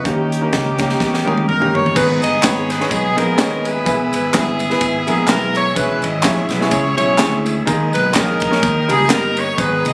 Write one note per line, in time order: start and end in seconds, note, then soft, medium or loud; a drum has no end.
0.00 0.31 A#3 medium
0.00 1.92 D#5 medium
0.00 1.92 C#6 medium
0.04 0.46 D#2 loud
0.04 0.75 D#3 medium
0.04 1.45 A#3 medium
0.04 0.31 C#4 medium
0.04 1.44 C#4 medium
0.04 0.32 D#4 medium
0.04 1.44 G4 medium
0.04 0.32 G4 medium
0.04 1.94 A#4 medium
0.04 1.94 G5 soft
0.04 kick loud
0.04 closed hi-hat medium
0.32 closed hi-hat medium
0.41 0.65 A#3 medium
0.41 0.66 C#4 medium
0.41 0.66 D#4 medium
0.41 0.66 A#4 medium
0.53 0.94 C#2 medium
0.53 kick medium
0.53 snare medium
0.53 closed hi-hat medium
0.78 1.09 A#3 medium
0.78 1.09 C#4 medium
0.78 1.09 D#4 medium
0.78 1.10 G4 medium
0.78 kick medium
0.78 snare soft
0.78 closed hi-hat medium
0.90 snare soft
1.00 1.23 E2 medium
1.00 kick medium
1.00 snare soft
1.14 snare soft
1.25 1.45 D#2 medium
1.25 1.47 A#3 medium
1.25 1.48 C#4 medium
1.25 1.48 D#4 medium
1.25 1.37 G#4 medium
1.25 1.48 A#4 medium
1.25 high tom medium
1.37 high tom medium
1.48 1.89 G1 medium
1.48 1.73 A#4 medium
1.48 mid tom medium
1.60 1.85 A#3 medium
1.60 1.85 C#4 medium
1.60 1.85 D#4 medium
1.60 1.85 G4 medium
1.60 mid tom medium
1.75 1.96 C#5 medium
1.75 floor tom medium
1.86 floor tom medium
1.95 2.19 G#1 loud
1.95 2.65 G#2 medium
1.95 2.27 G#3 medium
1.95 2.27 B3 medium
1.95 5.73 B3 medium
1.95 2.87 D#4 medium
1.95 2.27 D#4 medium
1.95 2.87 G#4 medium
1.95 2.28 G#4 medium
1.95 2.27 B4 medium
1.95 2.22 B4 medium
1.95 3.85 D#5 medium
1.95 8.59 G#5 medium
1.95 3.85 D#6 medium
1.95 kick loud
1.95 crash loud
1.95 tambourine medium
2.22 2.40 G1 medium
2.22 2.42 D#5 loud
2.22 ride bell medium
2.22 tambourine medium
2.43 2.69 G#3 medium
2.43 2.70 B3 medium
2.43 2.70 D#4 medium
2.43 2.70 G#4 medium
2.43 2.70 B4 medium
2.43 2.70 C#5 loud
2.43 kick loud
2.43 snare loud
2.43 clap loud
2.43 ride bell medium
2.43 tambourine medium
2.70 2.91 B4 medium
2.70 snare soft
2.70 ride bell medium
2.70 tambourine medium
2.79 3.04 G#3 medium
2.79 3.04 B3 medium
2.79 3.04 D#4 medium
2.79 3.05 G#4 medium
2.79 3.05 C#5 medium
2.79 snare soft
2.89 3.14 B1 medium
2.89 3.81 B3 medium
2.89 3.15 D#4 medium
2.89 3.17 G#4 medium
2.89 kick loud
2.89 ride bell medium
2.89 tambourine medium
3.16 3.35 A#1 medium
3.16 3.31 G#3 medium
3.16 3.31 B3 medium
3.16 3.82 D#4 medium
3.16 3.31 D#4 medium
3.16 3.32 G#4 medium
3.16 3.65 A#4 loud
3.16 3.32 A#4 medium
3.16 ride bell medium
3.16 tambourine soft
3.37 3.79 D#1 medium
3.37 3.69 G#3 medium
3.37 3.70 B3 medium
3.37 3.70 D#4 medium
3.37 3.70 G#4 medium
3.37 3.70 C#5 loud
3.37 snare loud
3.37 clap medium
3.37 ride bell medium
3.37 tambourine medium
3.65 4.33 E4 medium
3.65 4.34 G#4 medium
3.65 4.13 B4 loud
3.65 ride bell medium
3.65 tambourine medium
3.85 4.09 E1 loud
3.85 4.56 E3 medium
3.85 4.17 G#3 medium
3.85 4.17 B3 medium
3.85 4.17 E4 medium
3.85 4.18 G#4 medium
3.85 4.18 B4 medium
3.85 7.63 E5 medium
3.85 7.63 E6 medium
3.85 kick loud
3.85 ride bell medium
3.85 tambourine medium
4.13 4.31 G#1 medium
4.13 4.33 B4 medium
4.13 ride bell medium
4.13 tambourine medium
4.33 4.75 G1 medium
4.33 4.60 G#3 medium
4.33 4.60 B3 medium
4.33 5.25 B3 medium
4.33 4.60 E4 medium
4.33 5.25 E4 medium
4.33 4.61 G#4 medium
4.33 5.08 G#4 loud
4.33 4.61 B4 medium
4.33 kick loud
4.33 snare loud
4.33 clap loud
4.33 ride bell medium
4.33 tambourine loud
4.59 ride bell medium
4.59 tambourine medium
4.70 4.94 G#3 medium
4.70 4.94 B3 medium
4.70 4.95 E4 medium
4.70 4.95 G#4 medium
4.70 4.95 B4 medium
4.70 snare soft
4.81 5.04 G#1 medium
4.81 kick loud
4.81 ride bell medium
4.81 tambourine medium
5.07 5.26 A#1 medium
5.07 5.21 G#3 medium
5.07 5.22 B3 medium
5.07 5.22 E4 medium
5.07 5.22 G#4 medium
5.07 5.28 G#4 medium
5.07 5.22 A#4 medium
5.07 ride bell medium
5.07 tambourine medium
5.27 5.70 B1 medium
5.27 5.60 G#3 medium
5.27 5.60 B3 medium
5.27 5.60 E4 medium
5.27 5.60 G#4 medium
5.27 5.56 A#4 loud
5.27 5.61 B4 medium
5.27 snare loud
5.27 clap medium
5.27 ride bell medium
5.27 tambourine medium
5.55 5.76 C#5 loud
5.55 ride bell medium
5.55 tambourine medium
5.75 5.99 E1 loud
5.75 6.46 E3 medium
5.75 6.08 G#3 medium
5.75 6.08 C#4 medium
5.75 6.08 E4 medium
5.75 6.67 E4 medium
5.75 6.67 G#4 medium
5.75 6.08 G#4 medium
5.75 6.03 B4 loud
5.75 7.65 C#5 medium
5.75 6.08 C#5 medium
5.75 kick loud
5.75 ride bell medium
5.75 tambourine medium
6.02 6.21 G#1 medium
6.02 6.24 D#5 loud
6.02 ride bell medium
6.02 tambourine medium
6.22 6.47 A#1 loud
6.22 6.50 G#3 medium
6.22 6.50 C#4 medium
6.22 6.50 E4 medium
6.22 6.50 G#4 medium
6.22 6.50 C#5 medium
6.22 6.51 C#5 loud
6.22 kick loud
6.22 snare loud
6.22 clap loud
6.22 ride bell medium
6.22 tambourine medium
6.49 6.69 B1 loud
6.49 6.72 B4 medium
6.49 snare soft
6.49 ride bell medium
6.49 tambourine medium
6.60 6.85 G#3 medium
6.60 6.85 C#4 medium
6.60 6.85 E4 medium
6.60 6.85 G#4 medium
6.60 6.86 C#5 loud
6.60 snare soft
6.70 6.94 C#2 medium
6.70 6.96 E4 medium
6.70 6.95 G#4 medium
6.70 6.96 C#5 medium
6.70 kick loud
6.70 ride bell medium
6.70 tambourine medium
6.97 7.17 B1 medium
6.97 7.12 G#3 medium
6.97 7.12 C#4 medium
6.97 7.62 E4 medium
6.97 7.12 E4 medium
6.97 7.62 G#4 medium
6.97 7.12 G#4 medium
6.97 7.42 C#5 medium
6.97 7.12 C#5 medium
6.97 ride bell medium
6.97 tambourine medium
7.17 7.60 D2 medium
7.17 7.50 G#3 medium
7.17 7.50 C#4 medium
7.17 7.51 E4 medium
7.17 7.51 G#4 medium
7.17 7.51 C#5 medium
7.17 snare loud
7.17 clap medium
7.17 ride bell medium
7.17 tambourine medium
7.46 ride bell medium
7.46 tambourine medium
7.66 7.90 D#2 loud
7.66 8.37 D#3 medium
7.66 7.98 G#3 medium
7.66 7.98 A#3 medium
7.66 7.99 D#4 medium
7.66 7.99 G#4 medium
7.66 7.99 A#4 loud
7.66 9.57 A#4 medium
7.66 8.62 D#5 medium
7.66 kick loud
7.66 ride bell medium
7.66 tambourine medium
7.70 9.93 D#6 medium
7.93 8.12 B1 medium
7.93 8.13 B4 medium
7.93 ride bell medium
7.93 tambourine medium
8.12 8.56 A#1 medium
8.12 8.40 G#3 medium
8.12 8.40 A#3 medium
8.12 8.84 D#4 medium
8.12 8.41 D#4 medium
8.12 8.41 G#4 medium
8.12 8.89 A#4 loud
8.12 8.41 C#5 medium
8.12 kick medium
8.12 snare loud
8.12 clap medium
8.12 ride bell medium
8.12 tambourine medium
8.40 kick medium
8.40 ride bell medium
8.40 tambourine medium
8.50 8.62 G#3 medium
8.50 8.62 A#3 medium
8.50 8.62 D#4 medium
8.50 8.62 G#4 medium
8.50 8.62 C#5 medium
8.50 snare soft
8.62 8.86 D#2 loud
8.62 9.33 D#3 medium
8.62 9.93 D#5 medium
8.62 9.58 G5 medium
8.62 kick loud
8.62 ride bell medium
8.62 tambourine medium
8.88 9.07 C#2 medium
8.88 9.03 G3 medium
8.88 9.03 A#3 medium
8.88 9.03 D#4 medium
8.88 9.03 G4 medium
8.88 9.11 G#4 loud
8.88 9.04 A#4 medium
8.88 ride bell medium
8.88 tambourine soft
9.08 9.52 G1 medium
9.08 9.41 G3 medium
9.08 9.41 A#3 medium
9.08 9.41 D#4 medium
9.08 9.42 G4 medium
9.08 9.42 A#4 medium
9.08 snare loud
9.08 clap medium
9.08 ride bell medium
9.08 tambourine medium
9.12 9.38 A#4 loud
9.37 9.59 C#5 loud
9.37 ride bell medium
9.37 tambourine medium
9.57 9.81 G#1 loud
9.57 9.93 G#2 medium
9.57 9.89 G#3 medium
9.57 9.89 B3 medium
9.57 9.90 D#4 medium
9.57 9.93 D#4 medium
9.57 9.90 G#4 medium
9.57 9.93 G#4 medium
9.57 9.90 B4 medium
9.57 9.93 B4 medium
9.57 9.85 B4 loud
9.57 9.93 G#5 medium
9.57 kick loud
9.57 ride bell medium
9.57 tambourine medium
9.85 9.93 C#2 loud
9.85 9.93 D#5 loud
9.85 ride bell medium
9.85 tambourine medium